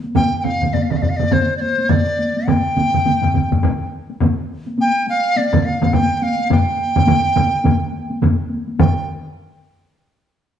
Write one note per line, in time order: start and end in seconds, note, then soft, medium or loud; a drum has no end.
0.04 taiko high medium
0.15 0.38 G5 loud
0.15 taiko low-mid loud
0.15 taiko mid loud
0.15 taiko high medium
0.40 0.46 G5 medium
0.44 0.75 F5 medium
0.44 taiko low-mid medium
0.44 taiko mid medium
0.44 taiko high medium
0.61 taiko low-mid medium
0.61 taiko mid medium
0.73 0.84 D5 medium
0.73 taiko low-mid medium
0.73 taiko mid medium
0.73 taiko high medium
0.83 0.93 F5 medium
0.90 0.98 D5 medium
0.90 taiko low-mid medium
0.90 taiko mid medium
0.97 1.04 F5 medium
1.02 1.11 D5 medium
1.02 taiko low-mid medium
1.02 taiko mid medium
1.09 1.18 F5 medium
1.17 1.34 D5 medium
1.17 taiko low-mid medium
1.17 taiko mid medium
1.17 taiko high medium
1.31 1.56 C5 medium
1.31 taiko low-mid medium
1.31 taiko mid medium
1.31 taiko high medium
1.57 1.91 C5 medium
1.57 1.62 D5 medium
1.57 taiko high medium
1.78 taiko high medium
1.89 2.49 D5 medium
1.89 taiko low-mid loud
1.89 taiko mid loud
1.89 taiko high medium
2.19 taiko high medium
2.36 taiko high medium
2.47 3.92 G5 medium
2.47 taiko low-mid loud
2.47 taiko mid loud
2.47 taiko high medium
2.77 taiko low-mid medium
2.77 taiko mid medium
2.77 taiko high medium
2.94 taiko low-mid medium
2.94 taiko mid medium
3.05 taiko low-mid medium
3.05 taiko mid medium
3.05 taiko high medium
3.22 taiko low-mid medium
3.22 taiko mid medium
3.34 taiko low-mid medium
3.34 taiko mid medium
3.34 taiko high medium
3.52 taiko low-mid medium
3.52 taiko mid medium
3.52 taiko high medium
3.63 taiko low-mid loud
3.63 taiko mid medium
3.63 taiko high medium
4.10 taiko high soft
4.21 taiko low-mid loud
4.21 taiko mid loud
4.21 taiko high medium
4.67 taiko high soft
4.79 5.06 G5 loud
4.79 taiko high medium
5.07 5.38 F5 loud
5.07 taiko high medium
5.36 5.67 D5 medium
5.36 taiko high medium
5.53 taiko low-mid loud
5.53 taiko mid loud
5.65 5.95 F5 medium
5.65 taiko high medium
5.82 taiko low-mid medium
5.82 taiko mid loud
5.82 taiko high medium
5.93 6.17 G5 medium
5.93 taiko low-mid loud
5.93 taiko mid loud
5.93 taiko high medium
6.17 6.24 G5 medium
6.22 6.51 F5 medium
6.22 taiko high medium
6.39 taiko high medium
6.50 8.19 G5 loud
6.50 taiko low-mid loud
6.50 taiko mid loud
6.50 taiko high medium
6.78 taiko high medium
6.96 taiko low-mid loud
6.96 taiko mid medium
6.96 taiko high medium
7.07 taiko low-mid medium
7.07 taiko mid loud
7.07 taiko high medium
7.36 taiko low-mid loud
7.36 taiko mid loud
7.36 taiko high medium
7.64 taiko low-mid medium
7.64 taiko mid medium
7.64 taiko high medium
7.92 taiko high medium
8.10 taiko high medium
8.22 taiko low-mid loud
8.22 taiko mid loud
8.22 taiko high medium
8.50 taiko high medium
8.68 taiko high soft
8.79 9.06 G5 medium
8.79 taiko low-mid loud
8.79 taiko mid loud
8.79 taiko high medium